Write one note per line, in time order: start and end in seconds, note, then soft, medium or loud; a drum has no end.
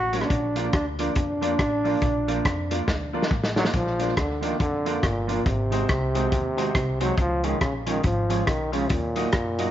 0.00 0.24 A1 medium
0.00 0.24 F#4 loud
0.13 0.23 F#3 loud
0.13 0.24 A#3 loud
0.13 0.25 C#4 medium
0.13 0.24 C#4 loud
0.13 0.26 F#4 medium
0.13 0.24 F#4 loud
0.13 0.26 A#4 medium
0.13 0.26 C#5 loud
0.13 closed hi-hat medium
0.21 0.74 D4 loud
0.21 cross-stick medium
0.30 0.67 A#1 loud
0.30 kick loud
0.30 closed hi-hat medium
0.55 0.66 F3 medium
0.55 0.67 A#3 loud
0.55 0.68 D4 medium
0.55 0.67 D4 medium
0.55 0.68 F4 medium
0.55 0.67 F4 loud
0.55 0.69 A#4 medium
0.55 0.69 D5 medium
0.55 closed hi-hat medium
0.73 1.10 D2 medium
0.73 0.86 D4 medium
0.73 kick loud
0.73 cross-stick loud
0.73 closed hi-hat medium
0.99 1.09 F3 medium
0.99 1.10 A#3 medium
0.99 1.11 D4 medium
0.99 1.10 D4 loud
0.99 3.28 D4 loud
0.99 1.11 F4 medium
0.99 1.10 F4 loud
0.99 1.12 A#4 medium
0.99 1.12 D5 loud
0.99 closed hi-hat medium
1.15 1.53 F2 loud
1.15 muted clean electric guitar stroke soft
1.15 kick loud
1.15 closed hi-hat medium
1.41 1.52 F3 medium
1.41 1.53 A#3 loud
1.41 1.54 D4 medium
1.41 1.53 D4 loud
1.41 1.54 F4 medium
1.41 1.53 F4 loud
1.41 1.54 A#4 medium
1.41 1.55 D5 loud
1.41 closed hi-hat medium
1.59 1.96 A1 medium
1.59 kick loud
1.59 cross-stick medium
1.59 closed hi-hat medium
1.84 1.95 F3 loud
1.84 1.95 A#3 loud
1.84 1.97 D4 medium
1.84 1.96 D4 loud
1.84 1.97 F4 medium
1.84 1.96 F4 loud
1.84 1.97 A#4 medium
1.84 1.98 D5 medium
1.84 open hi-hat soft
2.02 2.38 A#1 loud
2.02 kick loud
2.02 closed hi-hat medium
2.28 2.38 F3 loud
2.28 2.38 A#3 loud
2.28 2.40 D4 medium
2.28 2.39 D4 medium
2.28 2.40 F4 medium
2.28 2.39 F4 medium
2.28 2.41 A#4 medium
2.28 2.41 D5 medium
2.28 closed hi-hat medium
2.45 2.82 F2 loud
2.45 kick loud
2.45 cross-stick loud
2.45 closed hi-hat medium
2.71 2.81 F3 medium
2.71 2.82 A#3 medium
2.71 2.83 D4 medium
2.71 2.82 D4 medium
2.71 2.83 F4 medium
2.71 2.82 F4 loud
2.71 2.84 A#4 medium
2.71 2.84 D5 medium
2.71 closed hi-hat medium
2.88 3.25 D2 medium
2.88 kick loud
2.88 snare medium
3.13 3.24 F3 medium
3.13 3.24 A#3 medium
3.13 3.26 D4 medium
3.13 3.24 D4 medium
3.13 3.26 F4 medium
3.13 3.25 F4 medium
3.13 3.26 A#4 medium
3.13 3.27 D5 loud
3.22 snare medium
3.31 3.68 A1 medium
3.31 kick loud
3.43 snare medium
3.56 3.67 F3 medium
3.56 3.65 F#3 loud
3.56 3.67 A#3 medium
3.56 3.69 D4 medium
3.56 3.68 D4 loud
3.56 3.69 F4 medium
3.56 3.68 F4 loud
3.56 3.69 A#4 medium
3.56 3.70 D5 loud
3.56 snare medium
3.65 snare loud
3.73 4.10 A#1 loud
3.73 4.14 F3 loud
3.73 kick loud
3.73 closed hi-hat medium
3.99 4.10 F3 medium
3.99 4.10 A#3 medium
3.99 4.12 D4 medium
3.99 4.10 D4 medium
3.99 4.12 F4 medium
3.99 4.11 F4 medium
3.99 4.12 A#4 medium
3.99 4.13 D5 medium
3.99 closed hi-hat medium
4.17 4.54 D2 loud
4.17 4.46 D3 medium
4.17 kick loud
4.17 cross-stick loud
4.17 closed hi-hat medium
4.41 4.60 D#3 loud
4.41 4.52 F3 medium
4.41 4.53 A#3 loud
4.41 4.53 D4 loud
4.41 4.55 D4 medium
4.41 4.53 F4 loud
4.41 4.55 F4 medium
4.41 4.55 A#4 medium
4.41 4.56 D5 medium
4.41 closed hi-hat medium
4.59 4.97 F2 medium
4.59 5.06 D3 loud
4.59 muted clean electric guitar stroke soft
4.59 kick loud
4.59 closed hi-hat medium
4.85 4.96 F3 medium
4.85 4.96 A#3 loud
4.85 4.98 D4 medium
4.85 4.97 D4 loud
4.85 4.98 F4 medium
4.85 4.97 F4 loud
4.85 4.98 A#4 medium
4.85 4.99 D5 loud
4.85 closed hi-hat medium
5.03 5.40 G1 medium
5.03 5.30 A#2 medium
5.03 kick loud
5.03 cross-stick loud
5.03 closed hi-hat medium
5.27 5.48 A#2 medium
5.27 5.39 F3 medium
5.27 5.39 A#3 medium
5.27 5.39 D4 loud
5.27 5.41 D4 medium
5.27 5.39 F4 loud
5.27 5.41 F4 medium
5.27 5.41 A#4 medium
5.27 5.42 D5 medium
5.27 closed hi-hat medium
5.46 5.83 G#1 loud
5.46 7.01 C3 loud
5.46 kick loud
5.46 closed hi-hat medium
5.71 5.82 D#3 loud
5.71 5.82 G#3 medium
5.71 5.82 C4 medium
5.71 5.84 D#4 medium
5.71 5.84 F#4 medium
5.71 5.83 F#4 medium
5.71 5.84 G#4 medium
5.71 5.85 C5 loud
5.71 closed hi-hat medium
5.89 6.26 C2 loud
5.89 kick loud
5.89 cross-stick loud
5.89 closed hi-hat medium
6.14 6.25 D#3 loud
6.14 6.26 G#3 loud
6.14 6.26 C4 loud
6.14 6.27 D#4 medium
6.14 6.27 F#4 medium
6.14 6.26 F#4 medium
6.14 6.27 G#4 medium
6.14 6.28 C5 medium
6.14 closed hi-hat medium
6.32 6.69 D#2 loud
6.32 kick loud
6.32 closed hi-hat medium
6.57 6.68 D#3 medium
6.57 6.69 G#3 medium
6.57 6.69 C4 medium
6.57 6.70 D#4 medium
6.57 6.70 F#4 medium
6.57 6.69 F#4 loud
6.57 6.70 G#4 medium
6.57 6.70 C5 loud
6.57 closed hi-hat medium
6.75 7.11 C2 loud
6.75 kick loud
6.75 cross-stick loud
6.75 closed hi-hat medium
7.00 7.11 D#3 medium
7.00 7.17 F#3 loud
7.00 7.11 G#3 medium
7.00 7.11 C4 loud
7.00 7.13 D#4 medium
7.00 7.13 F#4 medium
7.00 7.12 F#4 loud
7.00 7.13 G#4 medium
7.00 7.13 C5 loud
7.00 closed hi-hat medium
7.17 7.54 C#2 loud
7.17 7.47 F3 loud
7.17 kick loud
7.17 closed hi-hat medium
7.43 7.62 D#3 medium
7.43 7.54 F3 medium
7.43 7.54 G#3 medium
7.43 7.56 C#4 medium
7.43 7.55 C#4 medium
7.43 7.56 F4 medium
7.43 7.55 F4 medium
7.43 7.56 G#4 medium
7.43 7.57 C#5 medium
7.43 closed hi-hat medium
7.61 7.98 A#1 medium
7.61 7.74 C#3 medium
7.61 kick loud
7.61 cross-stick loud
7.61 closed hi-hat medium
7.86 8.04 D#3 loud
7.86 7.97 F3 medium
7.86 7.97 G#3 medium
7.86 7.99 C#4 medium
7.86 7.98 C#4 medium
7.86 7.99 F4 medium
7.86 7.98 F4 medium
7.86 7.99 G#4 medium
7.86 8.00 C#5 loud
7.86 closed hi-hat medium
8.03 8.41 G#1 medium
8.03 8.49 F3 medium
8.03 muted clean electric guitar stroke soft
8.03 kick loud
8.03 closed hi-hat medium
8.29 8.40 F3 medium
8.29 8.41 G#3 medium
8.29 8.42 C#4 medium
8.29 8.41 C#4 medium
8.29 8.42 F4 medium
8.29 8.41 F4 medium
8.29 8.42 G#4 medium
8.29 8.43 C#5 loud
8.29 closed hi-hat medium
8.47 8.84 B1 medium
8.47 8.73 D#3 medium
8.47 kick loud
8.47 cross-stick medium
8.47 closed hi-hat medium
8.72 8.92 C#3 loud
8.72 8.83 F3 medium
8.72 8.84 G#3 medium
8.72 8.85 C#4 medium
8.72 8.84 C#4 loud
8.72 8.85 F4 medium
8.72 8.84 F4 medium
8.72 8.85 G#4 medium
8.72 8.85 C#5 loud
8.72 closed hi-hat medium
8.89 9.27 D#2 loud
8.89 9.71 A#2 loud
8.89 kick loud
8.89 closed hi-hat medium
9.15 9.27 F#3 medium
9.15 9.27 A#3 loud
9.15 9.28 D#4 medium
9.15 9.27 D#4 loud
9.15 9.28 F#4 medium
9.15 9.27 F#4 loud
9.15 9.28 A#4 medium
9.15 9.29 D#5 loud
9.15 closed hi-hat medium
9.32 9.70 F#2 medium
9.32 kick loud
9.32 cross-stick loud
9.32 closed hi-hat medium
9.58 9.69 F#3 medium
9.58 9.70 A#3 loud
9.58 9.71 D#4 medium
9.58 9.70 D#4 loud
9.58 9.71 F#4 medium
9.58 9.70 F#4 loud
9.58 9.71 A#4 medium
9.58 9.71 D#5 medium
9.58 closed hi-hat medium